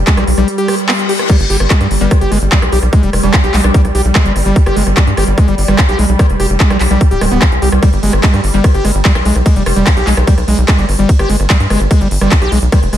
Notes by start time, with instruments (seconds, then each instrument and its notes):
Already playing: synth drone G3
0.07 acid bass G#3, kick, clap, closed hi-hat
0.17 analog synth bass B1, acid bass G3, cross-stick, closed hi-hat
0.27 analog synth bass B1, open hi-hat
0.38 analog synth bass B1, acid bass G3, cross-stick, closed hi-hat
0.48 closed hi-hat, reverse cymbal
0.58 acid bass G4, closed hi-hat
0.68 acid bass G4, cross-stick, open hi-hat
0.79 closed hi-hat
0.89 acid bass B3, cross-stick, clap, open hi-hat
0.99 closed hi-hat
1.09 acid bass G4, open hi-hat
1.19 cross-stick, closed hi-hat
1.29 synth drone G3, acid bass G3, kick, cross-stick, closed hi-hat, crash
1.40 analog synth bass G1, closed hi-hat
1.50 analog synth bass G1, acid bass G4, open hi-hat
1.60 analog synth bass G1, cross-stick, closed hi-hat
1.70 acid bass G#3, kick, clap, closed hi-hat
1.81 analog synth bass G2, acid bass G3, cross-stick, closed hi-hat
1.91 analog synth bass G1, open hi-hat
2.01 analog synth bass G1, acid bass G3, synth arpeggio sound B3, closed hi-hat
2.11 kick, cross-stick, closed hi-hat
2.21 analog synth bass G1, acid bass G4, closed hi-hat
2.32 analog synth bass G1, acid bass G#3, cross-stick, open hi-hat
2.42 analog synth bass G1, closed hi-hat
2.52 acid bass G3, kick, clap, closed hi-hat
2.62 analog synth bass B1, synth arpeggio sound G3, cross-stick, closed hi-hat
2.72 analog synth bass B1, acid bass G4, open hi-hat
2.83 analog synth bass B1, cross-stick, closed hi-hat
2.93 acid bass G#3, kick, closed hi-hat
3.03 analog synth bass F1, acid bass G3, closed hi-hat
3.13 analog synth bass F1, cross-stick, open hi-hat
3.23 analog synth bass F1, acid bass G3, synth arpeggio sound D4, closed hi-hat
3.34 kick, cross-stick, clap, closed hi-hat
3.44 analog synth bass B1, acid bass G4, closed hi-hat
3.54 analog synth bass B1, acid bass G#3, clap, open hi-hat
3.64 analog synth bass B1, synth arpeggio sound D4, cross-stick, closed hi-hat
3.74 acid bass G3, kick, closed hi-hat
3.85 analog synth bass B1, cross-stick, closed hi-hat
3.95 analog synth bass B1, acid bass G4, open hi-hat
4.05 analog synth bass B1, closed hi-hat
4.15 acid bass G#3, kick, cross-stick, clap, closed hi-hat
4.25 analog synth bass G1, acid bass G3, closed hi-hat
4.36 analog synth bass G1, cross-stick, open hi-hat
4.46 analog synth bass G1, acid bass G3, closed hi-hat
4.56 kick, closed hi-hat
4.66 analog synth bass G1, acid bass G4, cross-stick, closed hi-hat
4.76 analog synth bass G1, acid bass G#3, open hi-hat
4.87 analog synth bass G1, cross-stick, closed hi-hat
4.97 acid bass G3, kick, clap, closed hi-hat
5.07 analog synth bass G2, closed hi-hat
5.17 analog synth bass G1, acid bass G4, cross-stick, open hi-hat
5.27 analog synth bass G1
5.38 acid bass G#3, kick, cross-stick, closed hi-hat
5.48 analog synth bass G1, acid bass G3, closed hi-hat
5.58 analog synth bass G1, open hi-hat
5.68 analog synth bass G1, acid bass G3, cross-stick, closed hi-hat
5.78 kick, clap, closed hi-hat
5.89 analog synth bass B1, acid bass G4, cross-stick, closed hi-hat
5.99 analog synth bass B1, acid bass G#3, open hi-hat
6.09 analog synth bass B1, closed hi-hat
6.19 acid bass G3, kick, cross-stick, closed hi-hat
6.29 analog synth bass F1, closed hi-hat
6.40 analog synth bass F1, acid bass G4, cross-stick, open hi-hat
6.50 analog synth bass F1, closed hi-hat
6.60 acid bass G#3, kick, clap, closed hi-hat
6.70 analog synth bass B1, acid bass G3, cross-stick, closed hi-hat
6.80 analog synth bass B1, clap, open hi-hat
6.91 analog synth bass B1, acid bass G3, cross-stick, closed hi-hat
7.01 kick, closed hi-hat
7.11 analog synth bass D1, acid bass G4, closed hi-hat
7.21 analog synth bass D1, acid bass G#3, cross-stick, open hi-hat
7.32 analog synth bass D1, acid bass B3, closed hi-hat
7.42 acid bass G3, kick, cross-stick, clap, closed hi-hat
7.52 analog synth bass C2, closed hi-hat
7.62 analog synth bass C2, acid bass G4, open hi-hat
7.72 analog synth bass C2, cross-stick, closed hi-hat
7.83 acid bass G3, kick, cross-stick, closed hi-hat, ride
7.93 analog synth bass G1, closed hi-hat
8.03 analog synth bass G1, acid bass G#3, open hi-hat
8.13 analog synth bass G1, cross-stick
8.23 acid bass G#3, kick, clap, closed hi-hat, ride
8.34 analog synth bass G2, acid bass G3, cross-stick, closed hi-hat
8.44 analog synth bass G1, open hi-hat
8.54 analog synth bass G1, acid bass G3, synth arpeggio sound B3, closed hi-hat
8.64 kick, cross-stick, closed hi-hat, ride
8.74 analog synth bass G1, acid bass G4, closed hi-hat
8.85 analog synth bass G1, acid bass G#3, cross-stick, open hi-hat
8.95 analog synth bass G1, closed hi-hat
9.05 acid bass G3, kick, clap, closed hi-hat, ride
9.15 analog synth bass B1, synth arpeggio sound G3, cross-stick, closed hi-hat
9.25 analog synth bass B1, acid bass G#3, open hi-hat
9.36 analog synth bass B1, cross-stick, closed hi-hat
9.46 acid bass G#3, kick, closed hi-hat, ride
9.56 analog synth bass F1, acid bass G3, closed hi-hat
9.66 analog synth bass F1, synth arpeggio sound G3, cross-stick, open hi-hat
9.76 analog synth bass F1, acid bass G3, closed hi-hat
9.87 kick, cross-stick, clap, closed hi-hat, ride
9.97 analog synth bass B1, acid bass G4, closed hi-hat
10.07 analog synth bass B1, acid bass G#3, clap, open hi-hat
10.17 analog synth bass B1, cross-stick
10.27 acid bass G3, kick, closed hi-hat, ride
10.38 analog synth bass B1, cross-stick, closed hi-hat
10.48 analog synth bass B1, acid bass G#3, open hi-hat
10.58 analog synth bass B1, closed hi-hat
10.68 acid bass G#3, kick, cross-stick, clap, closed hi-hat, ride
10.78 analog synth bass G1, acid bass G3, closed hi-hat
10.89 analog synth bass G1, cross-stick, open hi-hat
10.99 analog synth bass G1, acid bass G3, closed hi-hat
11.09 kick, closed hi-hat, ride
11.19 analog synth bass G1, acid bass G4, cross-stick, closed hi-hat
11.29 analog synth bass G1, acid bass G#3, open hi-hat
11.40 analog synth bass G1, cross-stick, closed hi-hat
11.50 acid bass G3, kick, clap, closed hi-hat, ride
11.60 analog synth bass G2, closed hi-hat
11.70 analog synth bass G1, acid bass G#3, cross-stick, open hi-hat
11.81 analog synth bass G1, closed hi-hat
11.91 acid bass G#3, kick, cross-stick, closed hi-hat, ride
12.01 analog synth bass G1, acid bass G3, closed hi-hat
12.11 analog synth bass G1, open hi-hat
12.21 analog synth bass G1, acid bass G3, cross-stick, closed hi-hat
12.32 kick, clap, closed hi-hat, ride
12.42 analog synth bass B1, acid bass G4, cross-stick, closed hi-hat
12.52 analog synth bass B1, acid bass G#3, open hi-hat
12.62 analog synth bass B1, closed hi-hat
12.72 acid bass G3, kick, cross-stick, closed hi-hat, ride
12.83 analog synth bass F1, closed hi-hat
12.93 analog synth bass F1, acid bass G#3, cross-stick, open hi-hat